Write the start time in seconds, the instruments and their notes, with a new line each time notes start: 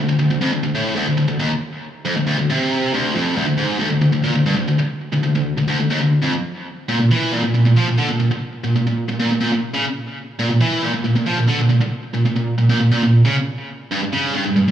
0.09 distorted electric guitar D2
0.19 distorted electric guitar D2
0.31 distorted electric guitar D2
0.41 distorted electric guitar F2
0.53 distorted electric guitar D2
0.63 distorted electric guitar D2
0.75 distorted electric guitar A2
0.96 distorted electric guitar D2
1.07 distorted electric guitar D2
1.17 distorted electric guitar D2
1.28 distorted electric guitar D2
1.40 distorted electric guitar D#2
2.05 distorted electric guitar F2
2.17 distorted electric guitar D2
2.27 distorted electric guitar D2
2.39 distorted electric guitar D2
2.50 distorted electric guitar C3
2.94 distorted electric guitar D2
3.15 distorted electric guitar F2
3.36 distorted electric guitar D2
3.47 distorted electric guitar D2
3.58 distorted electric guitar G#2
3.80 distorted electric guitar D2
3.90 distorted electric guitar D2
4.01 distorted electric guitar D2
4.12 distorted electric guitar D2
4.24 distorted electric guitar A#2
4.35 distorted electric guitar D2
4.46 distorted electric guitar G2
4.57 distorted electric guitar D2
4.68 distorted electric guitar D2
4.79 muted distorted electric guitar stroke
5.13 distorted electric guitar D2
5.23 distorted electric guitar D2
5.35 distorted electric guitar D2
5.58 distorted electric guitar D2
5.68 distorted electric guitar D2
5.80 distorted electric guitar D2
5.90 distorted electric guitar D#2
6.01 distorted electric guitar D2
6.22 distorted electric guitar F2
6.89 distorted electric guitar A#2
6.99 distorted electric guitar A#2
7.11 distorted electric guitar E3
7.32 distorted electric guitar A#2
7.43 distorted electric guitar A#2
7.54 distorted electric guitar A#2
7.65 distorted electric guitar A#2
7.76 distorted electric guitar F3
7.87 distorted electric guitar A#2
7.98 distorted electric guitar D3
8.09 distorted electric guitar A#2
8.20 distorted electric guitar A#2
8.31 muted distorted electric guitar stroke
8.64 distorted electric guitar A#2
8.76 distorted electric guitar A#2
8.87 distorted electric guitar A#2
9.09 distorted electric guitar A#2
9.19 distorted electric guitar A#2
9.31 distorted electric guitar A#2
9.40 distorted electric guitar A#2
9.52 distorted electric guitar A#2
9.74 distorted electric guitar C#3
10.39 distorted electric guitar A#2
10.50 distorted electric guitar A#2
10.61 distorted electric guitar E3
10.82 distorted electric guitar A#2
10.93 distorted electric guitar A#2
11.04 distorted electric guitar A#2
11.16 distorted electric guitar A#2
11.26 distorted electric guitar F3
11.37 distorted electric guitar A#2
11.48 distorted electric guitar D3
11.58 distorted electric guitar A#2
11.70 distorted electric guitar A#2
11.81 muted distorted electric guitar stroke
12.14 distorted electric guitar A#2
12.26 distorted electric guitar A#2
12.36 distorted electric guitar A#2
12.58 distorted electric guitar A#2
12.70 distorted electric guitar A#2
12.80 distorted electric guitar A#2
12.91 distorted electric guitar A#2
13.03 distorted electric guitar A#2
13.25 distorted electric guitar C#3
13.92 distorted electric guitar G2
14.03 distorted electric guitar G2
14.13 distorted electric guitar C#3
14.34 distorted electric guitar G2
14.46 distorted electric guitar G2
14.56 distorted electric guitar G2
14.68 distorted electric guitar G2